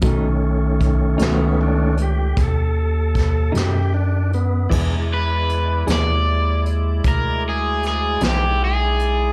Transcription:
<<
  \new Staff \with { instrumentName = "Overdriven electric guitar" } { \time 12/8 \key e \mixolydian \tempo 4. = 51 r1. | r8 b'4 d''4 r8 ais'8 gis'8 gis'8 g'8 gis'4 | }
  \new Staff \with { instrumentName = "Tonewheel organ" } { \time 12/8 \key e \mixolydian r4. b8 d'8 g'8 <gis' a'>4. g'8 d'8 b8 | <gis e' d''>1. | }
  \new Staff \with { instrumentName = "Tonewheel organ" } { \time 12/8 \key e \mixolydian <dis a cis'>2 <dis a cis'>8 r2. r8 | r1. | }
  \new Staff \with { instrumentName = "Clean electric guitar" } { \time 12/8 \key e \mixolydian <b, fis a dis'>8 r4 <b, fis a dis'>8 r2 r8 <b, fis a dis'>8 r4 | <e b d' gis'>8 r4 <e b d' gis'>8 r2 r8 <e b d' gis'>8 r4 | }
  \new Staff \with { instrumentName = "Analog synth bass" } { \clef bass \time 12/8 \key e \mixolydian b,,4. cis,4. dis,4. fis,4. | e,4. dis,4. d,4. b,,4. | }
  \new DrumStaff \with { instrumentName = "Drums" } \drummode { \time 12/8 <hh bd>4 <hh bd>8 <hh sn>4 hh8 <hh bd>4 <hh bd sn>8 <hh sn>4 hh8 | <cymc bd>4 hh8 <hh sn>4 hh8 <hh bd>4 <hh sn>8 <hh sn>4 hh8 | }
>>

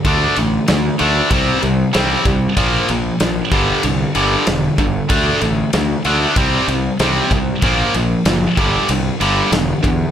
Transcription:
<<
  \new Staff \with { instrumentName = "Distorted electric guitar" } { \clef bass \time 4/4 \key g \major \tempo 4 = 95 <d a d'>8 <d a>8 <d a>8 <d a d'>8 <c g c'>8 <c g>8 <c g c'>8 <c g>8 | <bes, f bes>8 <bes, f>8 <bes, f>8 <g, d g>8 <g, d>8 <g, d g>8 <g, d>8 <g, d>8 | <d a d'>8 <d a>8 <d a>8 <d a d'>8 <c g c'>8 <c g>8 <c g c'>8 <c g>8 | <bes, f bes>8 <bes, f>8 <bes, f>8 <g, d g>8 <g, d>8 <g, d g>8 <g, d>8 <g, d>8 | }
  \new Staff \with { instrumentName = "Fingered electric bass" } { \clef bass \time 4/4 \key g \major d,8 a,,8 d,8 d,8 c,8 c,8 c,8 c,8 | bes,,8 bes,,8 bes,,8 g,,8 c,8 g,,8 e,,8 g,,8 | d,8 a,,8 d,8 d,8 c,8 c,8 c,8 c,8 | bes,,8 bes,,8 fis,,8 g,,8 c,8 g,,8 e,,8 e,8 | }
  \new DrumStaff \with { instrumentName = "Drums" } \drummode { \time 4/4 <bd cymr>8 cymr8 <cymr sn>8 cymr8 <bd cymr>8 cymr8 <cymr sn>8 <bd cymr>8 | <bd cymr>8 cymr8 <cymr sn>8 <bd cymr>8 cymr8 cymr8 <cymr sn>8 <bd cymr>8 | <bd cymr>8 cymr8 <cymr sn>8 cymr8 <bd cymr>8 cymr8 <cymr sn>8 <bd cymr>8 | <bd cymr>8 cymr8 <cymr sn>8 <bd cymr>8 cymr8 cymr8 <cymr sn>8 <bd cymr>8 | }
>>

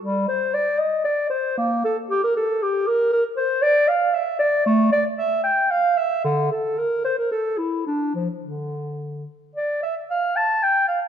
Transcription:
\new Staff \with { instrumentName = "Clarinet" } { \time 3/4 \key g \minor \tempo 4 = 115 g8 c''8 d''8 ees''8 d''8 c''8 | bes8 a'8 g'16 bes'16 a'8 g'8 bes'8 | \key d \minor bes'8 c''8 d''8 f''8 e''8 d''8 | a8 d''8 e''8 g''8 f''8 e''8 |
d8 a'8 bes'8 c''16 bes'16 a'8 e'8 | d'8 f8 d4. r8 | d''8 e''8 f''8 a''8 g''8 f''8 | }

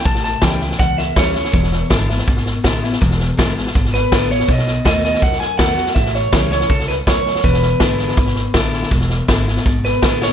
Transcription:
<<
  \new Staff \with { instrumentName = "Clean electric guitar" } { \time 4/4 \key e \mixolydian \tempo 4 = 163 a''8 a''8 g''4 fis''8 e''8 cis''4~ | cis''4 r2. | r2 r8 b'4 cis''8 | dis''4 dis''8 dis''8 fis''8 gis''8 fis''4 |
e''8 cis''4 cis''8 a'8 b'8 cis''4 | b'1~ | b'2~ b'8 b'4 cis''8 | }
  \new Staff \with { instrumentName = "Steel-string acoustic guitar" } { \time 4/4 \key e \mixolydian << { r4 <e g cis' e'>8 <cis' e'>8 r4 <e g cis' e'>8 <cis' e'>8 | r4 <d gis b e'>8 <b e'>8 r4 <d gis b e'>8 <b e'>8 | r4 <d gis b e'>8 <b e'>8 r4 <d gis b e'>8 <b e'>8 | r4 <dis a b fis'>4 r4 <dis a b fis'>8 <b fis'>8 |
r4 <e g cis' e'>8 e'8 r2 | r4 <d gis b e'>4 r4 <d gis b e'>4 | r4 <d gis b e'>8 <b e'>8 r4 <d gis b e'>4 | } \\ { a,2 e,2 | e,2 b,2 | e,2 b,2 | b,2 fis,2 |
a,2 g,4 fis,4 | e,2 b,2 | e,2 b,2 | } >> }
  \new Staff \with { instrumentName = "Upright bass" } { \clef bass \time 4/4 \key e \mixolydian a,,4 cis,4 cis,4 d,4 | e,,4 gis,,4 gis,,4 a,,4 | e,,4 gis,,4 gis,,4 a,,4 | b,,4 dis,4 dis,4 e,4 |
a,,4 cis,4 cis,4 d,4 | e,,4 gis,,4 gis,,4 a,,4 | e,,4 gis,,4 gis,,4 a,,4 | }
  \new DrumStaff \with { instrumentName = "Drums" } \drummode { \time 4/4 <bd sn>16 sn16 sn8 <hhp bd sn>8 sn16 sn16 <bd sn>8 sn8 <hhp bd sn>8 sn16 sn16 | <bd sn>16 sn16 sn8 <hhp bd sn>8 sn16 sn16 <bd sn>16 sn16 sn8 <hhp bd sn>8 sn16 sn16 | <bd sn>16 sn16 sn8 <hhp bd sn>8 sn16 sn16 <bd sn>16 sn16 sn8 <hhp bd sn>8 sn16 sn16 | <bd sn>16 sn16 sn8 <hhp bd sn>8 sn16 sn16 <bd sn>16 sn16 sn8 <hhp bd sn>8 sn16 sn16 |
<bd sn>16 sn16 sn8 <hhp bd sn>8 sn16 sn16 <bd sn>16 sn16 sn8 <hhp bd sn>8 sn16 sn16 | <bd sn>16 sn16 sn8 <hhp bd sn>8 sn16 sn16 <bd sn>16 sn16 sn8 <hhp bd sn>8 sn16 sn16 | <bd sn>16 sn16 sn8 <hhp bd sn>8 sn16 sn16 <bd sn>8 sn8 <hhp bd sn>8 sn8 | }
>>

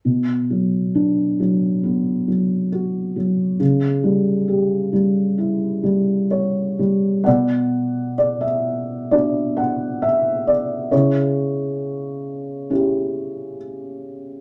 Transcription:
<<
  \new Staff \with { instrumentName = "Felt piano" } { \time 4/4 \key b \minor \tempo 4 = 67 << { r1 | r1 | fis''4 d''16 e''8. d''8 fis''8 e''8 d''8 | cis''2. r4 | } \\ { r1 | r1 | d''2 r2 | e'2. r4 | } >> }
  \new Staff \with { instrumentName = "Felt piano" } { \time 4/4 \key b \minor b,8 fis8 d'8 fis8 b8 fis8 fis'8 fis8 | cis8 g8 g'8 g8 e'8 g8 cis''8 g8 | b,2 <b d' fis'>2 | cis2 <cis' e' g'>2 | }
>>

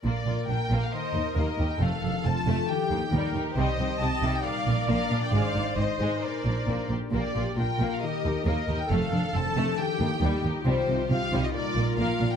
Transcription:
<<
  \new Staff \with { instrumentName = "Violin section" } { \time 4/4 \key bes \major \tempo 4 = 136 d''4 g''8. f''16 ees''4 ees''8. g''16 | f''4 a''4 g''4. r8 | ees''4 a''8. g''16 f''4 f''8. g''16 | f''4 ees''4 d''4. r8 |
d''4 g''8. f''16 ees''4 ees''8. g''16 | f''4 a''4 g''4. r8 | c''4 f''8. ees''16 d''4 f''8. g''16 | }
  \new Staff \with { instrumentName = "Viola section" } { \time 4/4 \key bes \major r2 c''4 bes'4 | a'4 f'4 g'4 bes'4 | c''4 ees''4 d''2~ | d''4 c''4 bes'4. r8 |
g'4 f'4 g'4 bes'4 | a'2 g'2 | f'1 | }
  \new Staff \with { instrumentName = "Harp" } { \time 4/4 \key bes \major bes,8 bes8 f'8 bes'8 ees8 ees'8 g'8 bes'8 | f8 d'8 f'8 a'8 ees8 ees'8 bes'8 g'8 | c8 g8 ees'8 c''8 bes,8 bes8 d'8 d''8 | aes,8 c'8 ees'8 c''8 bes,8 d'8 g'8 bes'8 |
bes,8 bes8 f'8 bes'8 ees8 ees'8 g'8 bes'8 | f8 d'8 c''8 a'8 ees8 ees'8 ees''8 g'8 | c8 g8 ees'8 ees''8 bes,8 bes8 f'8 d''8 | }
  \new Staff \with { instrumentName = "Violin section" } { \time 4/4 \key bes \major << { bes'1 | a'2 g'2~ | g'2 bes'2 | c''2.~ c''8 r8 |
bes'1 | a'2 g'2~ | g'2 bes'2 | } \\ { bes8 f'8 d'8 bes8 r8 ees'8 bes8 g'8 | a8 d'8 c'8 a8 r8 bes8 g8 ees'8 | g8 ees'8 c'8 g8 r8 bes8 bes8 d'8 | aes8 ees'8 c'8 aes8 r8 d'8 bes8 g'8 |
bes8 f'8 d'8 bes8 r8 ees'8 bes8 g'8 | a8 d'8 c'8 a8 r8 bes8 g8 ees'8 | g8 ees'8 c'8 g8 r8 bes8 bes8 d'8 | } >> }
  \new Staff \with { instrumentName = "Cello section" } { \clef bass \time 4/4 \key bes \major bes,8 bes,8 bes,8 bes,8 r8 ees,8 ees,8 ees,8 | f,8 f,8 f,8 f,8 r8 ees,8 ees,8 ees,8 | c8 c8 c8 c8 r8 bes,8 bes,8 bes,8 | aes,8 aes,8 aes,8 aes,8 r8 bes,8 bes,8 bes,8 |
bes,8 bes,8 bes,8 bes,8 r8 ees,8 ees,8 ees,8 | f,8 f,8 f,8 f,8 r8 ees,8 ees,8 ees,8 | c8 c8 c8 c8 r8 bes,8 bes,8 bes,8 | }
  \new Staff \with { instrumentName = "Double bass section" } { \clef bass \time 4/4 \key bes \major bes,,8 bes,,8 bes,,8 bes,,8 r8 ees,8 ees,8 ees,8 | f,,8 f,,8 f,,8 f,,8 r8 ees,8 ees,8 ees,8 | c,8 c,8 c,8 c,8 r8 bes,,8 bes,,8 bes,,8 | aes,,8 aes,,8 aes,,8 aes,,8 r8 bes,,8 bes,,8 bes,,8 |
bes,,8 bes,,8 bes,,8 bes,,8 r8 ees,8 ees,8 ees,8 | f,,8 f,,8 f,,8 f,,8 r8 ees,8 ees,8 ees,8 | c,8 c,8 c,8 c,8 r8 bes,,8 bes,,8 bes,,8 | }
>>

